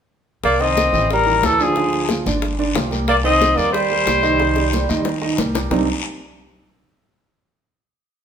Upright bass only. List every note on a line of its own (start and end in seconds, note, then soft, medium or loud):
0.43 0.90 C2 medium
0.93 1.40 A1 medium
1.43 2.20 D2 medium
2.26 2.72 G1 medium
2.75 3.52 C2 medium
3.58 4.03 D#2 medium
4.07 4.83 C2 medium
4.89 5.35 D#2 medium
5.39 5.67 C2 medium
5.71 5.86 C2 medium